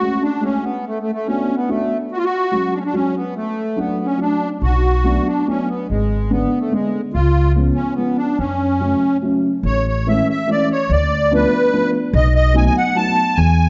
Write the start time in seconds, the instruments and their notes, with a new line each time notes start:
Already playing: accordion F#4
0.00 upright piano G#3 A3 C#4 F#4
0.23 accordion D4
0.41 upright piano G#3 A3 C#4 F#4, accordion C#4
0.63 accordion B3
0.87 accordion A3
1.00 accordion A3
1.13 accordion A3
1.26 upright piano A3 B3 D4 F#4, accordion C#4
1.56 accordion B3
1.68 accordion A3, upright piano A3 B3 D4 F#4
2.12 accordion F#4
2.17 accordion F4
2.24 accordion F#4
2.51 upright piano F#3 G#3 C#4 F#4
2.74 accordion D4
2.78 accordion C#4
2.86 accordion D4
2.93 upright piano F#3 G#3 C#4 F#4, accordion C#4
3.15 accordion B3
3.36 accordion A3
3.76 upright piano F#3 A3 D4 F#4, accordion B3
4.05 accordion C#4
4.18 upright piano F#3 A3 D4 F#4, accordion D4
4.62 upright bass B1, accordion F#4
5.04 upright piano F#3 A3 B3 D4
5.27 accordion D4
5.46 upright piano F#3 A3 B3 D4, accordion C#4
5.68 accordion B3
5.89 upright bass G#1, accordion G#3
6.30 upright piano D3 G#3 B3 D4, accordion B3
6.60 accordion A3
6.71 upright piano D3 G#3 B3 D4, accordion G#3
7.14 upright bass C#2, accordion F4
7.56 upright piano F3 G#3 B3 C#4
7.74 accordion C#4
7.94 upright piano F3 G#3 B3 C#4, accordion B3
8.16 accordion D4
8.38 upright bass F#2, accordion C#4
8.80 upright piano C#3 F#3 A3 C#4
9.22 upright piano C#3 F#3 A3 C#4
9.63 upright bass A1, accordion C#5
9.88 accordion C#5
10.07 upright piano E3 G#3 A3 C#4, accordion E5
10.30 accordion E5
10.47 upright piano E3 G#3 A3 C#4, accordion D5
10.72 accordion C#5
10.90 upright bass D2, accordion D5
11.31 upright piano F3 A3 B3 D4, accordion B4
11.72 upright piano F3 A3 B3 D4
12.13 upright bass B1, accordion D#5
12.35 accordion D#5
12.54 upright piano F#3 A3 B3 D#4, accordion G#5
12.66 accordion G#5
12.77 accordion F#5
12.95 upright piano F#3 A3 B3 D#4, accordion A5
13.35 upright bass E2, accordion G#5